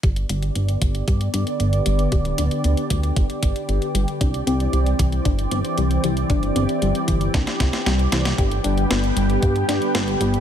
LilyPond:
<<
  \new Staff \with { instrumentName = "Synth arpeggio sound" } { \time 4/4 \key g \major \tempo 4 = 115 g'8 d'8 b8 g8 g'8 d'8 b8 g16 r16 | g'8 d'8 b8 g8 g'8 d'8 b8 g16 r16 | d'8 c'8 g8 e8 d'8 c'8 g8 e16 r16 | d'8 c'8 g8 e8 d'8 c'8 g8 e16 r16 |
g'8 d'8 b8 g8 g'8 d'8 b8 g16 r16 | }
  \new Staff \with { instrumentName = "Analog synth pad" } { \time 4/4 \key g \major << { <d b d''>1~ | <d b d''>1 | <e c' d''>1~ | <e c' d''>1 |
<d g g'>1 | } \\ { g'1~ | g'1~ | g'1~ | g'1 |
b1 | } >> }
  \new Staff \with { instrumentName = "Analog synth bass" } { \clef bass \time 4/4 \key g \major g,,8 g,,8 g,,8 g,,8 g,8 g,8 g,,8 g,,8 | d,,8 d,,8 d,8 d,8 g,,8 g,,8 g,,8 g,,8 | c,8 c,8 c,8 c,8 g,,8 g,,8 c,8 c,8 | g,,8 g,,8 g,,8 g,,8 c,8 c,8 c,8 c,8 |
g,,8 g,,8 g,,8 g,,8 g,8 g,8 g,,8 g,,8 | }
  \new DrumStaff \with { instrumentName = "Drums" } \drummode { \time 4/4 <hh bd>16 hh16 hh16 hh16 hh16 hh16 <hh bd>16 hh16 <hh bd>16 hh16 hh16 hh16 hh16 hh16 hh16 hh16 | <hh bd>16 hh16 hh16 hh16 hh16 hh16 <hh bd>16 hh16 <hh bd>16 hh16 <hh bd>16 hh16 hh16 hh16 hh16 hh16 | <hh bd>16 hh16 hh16 hh16 hh16 hh16 <hh bd>16 hh16 <hh bd>16 hh16 hh16 hh16 hh16 hh16 hh16 hh16 | <hh bd>16 hh16 hh16 hh16 hh16 hh16 <hh bd>16 hh16 <hh bd sn>16 <hh sn>16 <hh bd sn>16 <hh sn>16 <hh sn>16 hh16 <hh sn>16 <hh sn>16 |
<hh bd>16 hh16 hh16 hh16 <hh sn>16 hh16 hh16 hh16 <hh bd>16 hh16 <hh sn>16 hh16 <hh sn>16 hh16 hh16 hh16 | }
>>